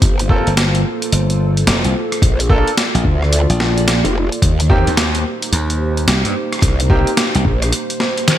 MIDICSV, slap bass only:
0, 0, Header, 1, 2, 480
1, 0, Start_track
1, 0, Tempo, 550459
1, 19, Time_signature, 4, 2, 24, 8
1, 7308, End_track
2, 0, Start_track
2, 0, Title_t, "Slap bass"
2, 0, Program_c, 0, 36
2, 411, Note_on_c, 0, 31, 93
2, 725, Note_off_c, 0, 31, 0
2, 978, Note_on_c, 0, 31, 95
2, 1445, Note_off_c, 0, 31, 0
2, 1457, Note_on_c, 0, 29, 94
2, 1585, Note_off_c, 0, 29, 0
2, 1609, Note_on_c, 0, 36, 97
2, 1684, Note_off_c, 0, 36, 0
2, 2569, Note_on_c, 0, 34, 101
2, 2644, Note_off_c, 0, 34, 0
2, 3048, Note_on_c, 0, 34, 90
2, 3505, Note_off_c, 0, 34, 0
2, 4248, Note_on_c, 0, 39, 95
2, 4564, Note_off_c, 0, 39, 0
2, 4817, Note_on_c, 0, 39, 100
2, 5284, Note_off_c, 0, 39, 0
2, 5297, Note_on_c, 0, 36, 92
2, 5425, Note_off_c, 0, 36, 0
2, 5447, Note_on_c, 0, 43, 95
2, 5523, Note_off_c, 0, 43, 0
2, 6411, Note_on_c, 0, 36, 98
2, 6485, Note_off_c, 0, 36, 0
2, 7308, End_track
0, 0, End_of_file